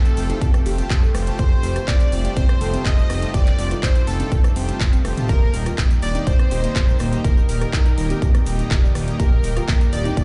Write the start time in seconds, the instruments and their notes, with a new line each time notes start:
Already playing: ambient pad C3 G3 A3 F4 G4, violin section A4, digital synth lead A4
0.05 synth pluck C4, closed hi-hat, shaker
0.17 analog synth bass F1, supersaw synth A3 F4 G4 C5 G5, synth pluck C4, open hi-hat, shaker
0.29 supersaw synth A3 F4 G4 C5 G5, synth pluck D#4, closed hi-hat, high conga, shaker
0.41 analog synth bass F1, supersaw synth A3 F4 G4 C5 G5, synth pluck C4, kick, closed hi-hat, shaker
0.54 synth pluck C4, cross-stick, closed hi-hat, high conga, shaker
0.66 analog synth bass F1, supersaw synth A3 F4 G4 C5 G5, synth pluck G4, open hi-hat, shaker
0.78 supersaw synth A3 F4 G4 C5 A5, synth pluck C4, closed hi-hat, shaker
0.90 analog synth bass F1, supersaw synth A3 F4 G4 C5 A5, synth pluck C4, kick, clap, closed hi-hat, shaker
1.03 synth pluck A4, shaker
1.15 analog synth bass F1, supersaw synth A3 F4 G4 C5 G5, synth pluck C4, cross-stick, open hi-hat, shaker
1.27 supersaw synth A3 F4 G4 C5 A5, synth pluck C4, closed hi-hat, shaker
1.38 analog synth bass F1, supersaw synth A3 F4 G4 C5 G5, ambient pad D#4, synth pluck A4, digital synth lead C5, violin section C5, kick, closed hi-hat, shaker
1.52 synth pluck C4
1.63 analog synth bass F1, supersaw synth A3 F4 G4 C5 G5, synth pluck C4, open hi-hat, shaker
1.76 synth pluck G4, cross-stick, closed hi-hat, shaker
1.88 analog synth bass F1, supersaw synth A3 F4 G4 C5 G5, synth pluck C4, digital synth lead D5, violin section D5, kick, clap, closed hi-hat, shaker
2.00 synth pluck C4, closed hi-hat, shaker
2.12 analog synth bass F1, supersaw synth A3 F4 G4 C5 G5, synth pluck C4, open hi-hat, shaker
2.25 supersaw synth A3 F4 G4 C5 G5, synth pluck F4, closed hi-hat, high conga, shaker
2.36 analog synth bass F1, supersaw synth A3 F4 G4 C5 G5, synth pluck C4, digital synth lead C5, violin section C5, kick, closed hi-hat, shaker
2.49 synth pluck C4, cross-stick, closed hi-hat, high conga
2.61 analog synth bass F1, supersaw synth A3 F4 G4 C5 G5, synth pluck A4, open hi-hat, shaker
2.73 supersaw synth A3 F4 G4 C5 A5, synth pluck C4, closed hi-hat, shaker
2.85 analog synth bass F1, supersaw synth A3 F4 G4 C5 A5, digital synth lead D#5, violin section D#5, kick, clap, closed hi-hat, shaker
2.98 synth pluck C5, shaker
3.09 analog synth bass F1, supersaw synth A3 F4 G4 C5 G5, synth pluck C4, cross-stick, open hi-hat, shaker
3.22 supersaw synth A3 F4 G4 C5 A5, synth pluck C4, closed hi-hat, shaker
3.34 analog synth bass F1, supersaw synth A3 F4 G4 C5 G5, synth pluck G4, violin section D5, digital synth lead D5, kick, closed hi-hat, shaker
3.46 synth pluck C4, clap, closed hi-hat, shaker
3.59 analog synth bass F1, supersaw synth A3 F4 G4 C5 G5, synth pluck C4, open hi-hat, shaker
3.71 synth pluck F4, cross-stick, closed hi-hat, shaker
3.83 analog synth bass F1, supersaw synth A3 F4 G4 C5 G5, synth pluck C4, violin section C5, digital synth lead C5, kick, clap, closed hi-hat, shaker
3.96 synth pluck C4, closed hi-hat, shaker
4.07 analog synth bass F1, supersaw synth A3 F4 G4 C5 G5, synth pluck C4, digital synth lead A4, violin section A4, open hi-hat, shaker
4.20 supersaw synth A3 F4 G4 C5 G5, synth pluck D4, closed hi-hat, high conga, shaker
4.31 analog synth bass F1, supersaw synth A3 F4 G4 C5 G5, synth pluck C4, kick, closed hi-hat, shaker
4.44 synth pluck C4, cross-stick, closed hi-hat, high conga, shaker
4.56 analog synth bass F1, supersaw synth A3 F4 G4 C5 G5, synth pluck C4, open hi-hat, shaker
4.68 supersaw synth A3 F4 G4 C5 A5, synth pluck C4, closed hi-hat, shaker
4.80 analog synth bass F1, supersaw synth A3 F4 G4 C5 A5, kick, clap, closed hi-hat, shaker
4.93 synth pluck C4, closed hi-hat, shaker
5.05 analog synth bass F1, supersaw synth A3 F4 G4 C5 G5, synth pluck C4, cross-stick, open hi-hat, high conga, shaker
5.17 supersaw synth A3 F4 G4 C5 A5, synth pluck C4, closed hi-hat, mid tom, shaker
5.29 analog synth bass D#1, ambient pad A#2 D#3 G4, supersaw synth D#3 A#3 D#4 G4 D#5 G5, synth pluck G4, digital synth lead A#4, violin section A#4, kick, closed hi-hat, shaker
5.42 synth pluck A#3
5.54 analog synth bass D#1, supersaw synth D#3 A#3 D#4 G4 D#5 G5, synth pluck A#3, open hi-hat, shaker
5.66 synth pluck F4, cross-stick, closed hi-hat, shaker
5.78 analog synth bass D#1, supersaw synth D#3 A#3 D#4 G4 D#5 G5, kick, clap, closed hi-hat, shaker
5.91 synth pluck A#3, closed hi-hat, shaker
6.02 analog synth bass D#1, supersaw synth D#3 A#3 D#4 G4 D#5 G5, synth pluck A#3, violin section D5, digital synth lead D5, open hi-hat, shaker
6.15 supersaw synth D#3 A#3 D#4 G4 D#5 G5, synth pluck D#4, closed hi-hat, high conga, shaker
6.27 analog synth bass D#1, supersaw synth D#3 A#3 D#4 G4 D#5 G5, digital synth lead C5, violin section C5, kick, closed hi-hat, shaker
6.39 synth pluck A#3, cross-stick, closed hi-hat, high conga
6.51 analog synth bass D#1, supersaw synth D#3 A#3 D#4 G4 D#5 G5, synth pluck G4, open hi-hat, shaker
6.63 supersaw synth D#3 A#3 D#4 G4 D#5 A#5, synth pluck A#3, closed hi-hat, shaker
6.75 analog synth bass D#1, supersaw synth D#3 A#3 D#4 G4 D#5 A#5, synth pluck A#3, kick, clap, closed hi-hat, shaker
6.88 synth pluck A#4, shaker
6.99 analog synth bass D#1, supersaw synth D#3 A#3 D#4 G4 D#5 G5, synth pluck A#3, cross-stick, open hi-hat, shaker
7.13 supersaw synth D#3 A#3 D#4 G4 D#5 A#5, synth pluck A#3, closed hi-hat, shaker
7.24 analog synth bass D#1, supersaw synth D#3 A#3 D#4 G4 D#5 G5, synth pluck A#4, violin section A#4, digital synth lead A#4, kick, closed hi-hat, shaker
7.37 synth pluck D#4, shaker
7.49 analog synth bass D#1, supersaw synth D#3 A#3 D#4 G4 D#5 G5, synth pluck D#4, digital synth lead A#4, violin section A#4, open hi-hat, shaker
7.61 synth pluck A#4, cross-stick, closed hi-hat, shaker
7.73 analog synth bass D#1, supersaw synth D#3 A#3 D#4 G4 D#5 G5, synth pluck D#4, kick, clap, closed hi-hat, shaker
7.86 synth pluck D#4, closed hi-hat, shaker
7.98 analog synth bass D#1, supersaw synth D#3 A#3 D#4 G4 D#5 G5, synth pluck D#4, open hi-hat, shaker
8.10 supersaw synth D#3 A#3 D#4 G4 D#5 G5, synth pluck G4, closed hi-hat, high conga, shaker
8.22 analog synth bass D#1, supersaw synth D#3 A#3 D#4 G4 D#5 G5, synth pluck D#4, kick, closed hi-hat, shaker
8.34 synth pluck D#4, cross-stick, closed hi-hat, high conga, shaker
8.46 analog synth bass D#1, supersaw synth D#3 A#3 D#4 G4 D#5 G5, synth pluck A#4, open hi-hat, shaker
8.59 supersaw synth D#3 A#3 D#4 G4 D#5 A#5, synth pluck D#4, closed hi-hat, shaker
8.71 analog synth bass D#1, supersaw synth D#3 A#3 D#4 G4 D#5 A#5, synth pluck D#4, kick, clap, closed hi-hat, shaker
8.83 synth pluck D5, shaker
8.95 analog synth bass D#1, supersaw synth D#3 A#3 D#4 G4 D#5 G5, synth pluck D#4, cross-stick, open hi-hat, shaker
9.08 supersaw synth D#3 A#3 D#4 G4 D#5 A#5, synth pluck D#4, closed hi-hat, shaker
9.19 analog synth bass D#1, ambient pad D3, supersaw synth D#3 A#3 D#4 G4 D#5 G5, synth pluck G4, violin section A#4, digital synth lead A#4, kick, closed hi-hat, shaker
9.32 synth pluck A#3
9.44 analog synth bass D#1, supersaw synth D#3 A#3 D#4 G4 D#5 G5, synth pluck A#3, open hi-hat, shaker
9.57 synth pluck F4, cross-stick, closed hi-hat, shaker
9.68 analog synth bass D#1, supersaw synth D#3 A#3 D#4 G4 D#5 G5, synth pluck A#3, kick, clap, closed hi-hat, shaker
9.81 synth pluck A#3, closed hi-hat, shaker
9.93 analog synth bass D#1, supersaw synth D#3 A#3 D#4 G4 D#5 G5, synth pluck A#3, digital synth lead D5, violin section D5, open hi-hat, shaker
10.05 supersaw synth D#3 A#3 D#4 G4 D#5 G5, synth pluck D#4, closed hi-hat, high conga, shaker
10.17 analog synth bass D#1, supersaw synth D#3 A#3 D#4 G4 D#5 G5, synth pluck A#3, kick, closed hi-hat, shaker